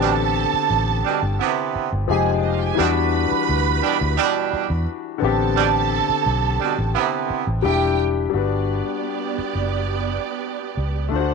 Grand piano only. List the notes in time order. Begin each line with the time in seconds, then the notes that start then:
Already playing: D3 B3 C4 G4
2.08 F3 G#3 D#4 G4
2.75 E3 G3
2.79 D4 F#4
5.18 D3 B3
5.22 C4 G4
7.62 G3 D4 E4 G4
8.30 G3 D4
8.34 F#4 B4
11.09 A3 D4
11.13 F4 C5
11.20 F#4